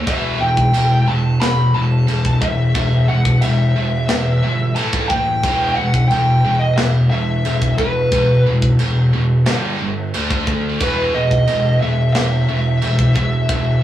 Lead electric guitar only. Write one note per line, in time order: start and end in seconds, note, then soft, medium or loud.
0.08 0.42 E5 loud
0.40 1.08 G5 loud
1.08 1.42 A5 loud
1.40 1.75 B5 loud
1.75 2.44 A5 loud
2.41 3.05 E5 medium
3.08 3.43 F#5 medium
3.41 4.80 E5 loud
4.75 5.07 A5 medium
5.09 5.75 G5 loud
5.76 6.08 F#5 medium
6.08 6.62 G5 medium
6.59 6.77 D#5 medium
6.77 6.86 E5 medium
7.10 7.74 E5 medium
7.78 8.42 B4 medium
10.82 11.16 B4 loud
11.15 11.80 D#5 loud
11.81 12.12 E5 loud
12.13 13.83 E5 loud